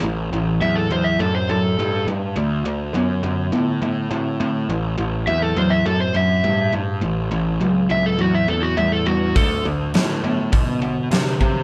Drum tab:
HH |--------|--------|--------|--------|
SD |--------|--------|--------|--------|
BD |--------|--------|--------|--------|

HH |o-o-o-o-|
SD |--o---o-|
BD |o---o--o|